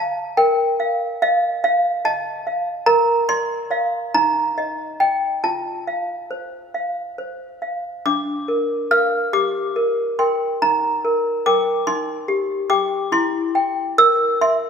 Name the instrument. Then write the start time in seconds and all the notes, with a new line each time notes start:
toy piano
Already playing: F5 A5
0.37 A#4 G5
0.80 F5
1.22 D#5 F5
1.64 F5
2.05 D#5 A5
2.47 F5
2.86 A#4 A#5
3.29 D5 C6
3.71 D5 F5
4.14 D#4 A#5
4.58 D#5
5.00 D#5 G5
5.44 F4 A5
5.87 F5
6.31 C5
6.74 F5
7.18 C5
7.62 F5
8.06 D4 D6
8.48 A#4
8.91 A#4 F5 F6
9.33 G4 D6
9.76 A#4
10.19 A#4 G5 C6
10.62 D#4 A#5
11.05 A#4
11.46 A#4 G5 D6
11.87 D#4 C6
12.28 G4
12.70 G4 G5 D6
13.12 E4 C6
13.55 G5
13.98 A#4 E6
14.41 E5 C6